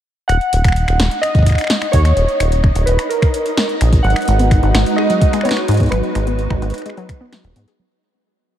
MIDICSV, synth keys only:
0, 0, Header, 1, 2, 480
1, 0, Start_track
1, 0, Key_signature, 5, "minor"
1, 0, Tempo, 468750
1, 301, Time_signature, 4, 2, 24, 8
1, 8788, End_track
2, 0, Start_track
2, 0, Title_t, "Synth keys"
2, 0, Program_c, 0, 88
2, 284, Note_on_c, 0, 78, 103
2, 1244, Note_on_c, 0, 75, 98
2, 1281, Note_off_c, 0, 78, 0
2, 1965, Note_on_c, 0, 73, 97
2, 1994, Note_off_c, 0, 75, 0
2, 2926, Note_on_c, 0, 71, 79
2, 2962, Note_off_c, 0, 73, 0
2, 3166, Note_on_c, 0, 70, 75
2, 3181, Note_off_c, 0, 71, 0
2, 3852, Note_off_c, 0, 70, 0
2, 4124, Note_on_c, 0, 78, 102
2, 5051, Note_off_c, 0, 78, 0
2, 5083, Note_on_c, 0, 75, 99
2, 5564, Note_on_c, 0, 73, 87
2, 5586, Note_off_c, 0, 75, 0
2, 6018, Note_off_c, 0, 73, 0
2, 6045, Note_on_c, 0, 71, 79
2, 7452, Note_off_c, 0, 71, 0
2, 8788, End_track
0, 0, End_of_file